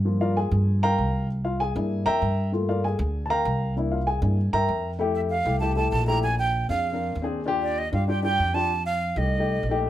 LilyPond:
<<
  \new Staff \with { instrumentName = "Flute" } { \time 4/4 \key g \dorian \tempo 4 = 194 r1 | r1 | r1 | r1 |
r8 e''8 f''4 a''8 a''8 a''8 bes''8 | aes''8 g''4 f''2 r8 | r8 d''8 ees''8 f''8 g''8 g''4 a''8~ | a''8 f''4 ees''2 r8 | }
  \new Staff \with { instrumentName = "Grand piano" } { \time 4/4 \key g \dorian << { r8 <f' bes' d'' f''>8 <aes' aes''>4. <bes' f'' g'' bes''>4. | r8 <f' f''>8 <aes' aes''>4. <bes' e'' g'' bes''>4. | r8 <f' bes' d'' f''>8 <aes' aes''>4. <bes' f'' g'' a'' bes''>4. | r8 <f' f''>8 <aes' aes''>4. <bes' e'' g'' bes''>4~ <bes' e'' g'' bes''>16 r16 |
<a e' g'>4 r8 <a e' g'>16 r16 <a e' g'>16 r16 <a e' g'>8. r16 <a e' g'>8 | r4. <c' d' aes'>8 r16 <c' d' bes'>8. r16 <c' d' aes'>8 r16 | <d' f' g'>4 r8 <d' f' g'>16 r16 <d' f' g'>16 r16 <d' f' g'>8. r16 <d' f' g'>8 | r4. <a ees' g'>8 r16 <a ees' g'>8. r16 <a ees' g'>8 r16 | } \\ { <f bes f'>1 | r4. <bes d' e'>4. r4 | <a bes f'>4. r2 r8 | <bes d' e'>8 r4 <bes d' e'>8 r2 |
r1 | r1 | r1 | r1 | } >> }
  \new Staff \with { instrumentName = "Upright bass" } { \clef bass \time 4/4 \key g \dorian g,4. g,4. c,4~ | c,4. g,4 f,8 g,4~ | g,4. d,4. c,4~ | c,4. g,4 g,8 f,4~ |
f,4. c,4. bes,,4~ | bes,,4. f,4. ees,4~ | ees,4. g,4. f,4~ | f,4. c,4. bes,,4 | }
>>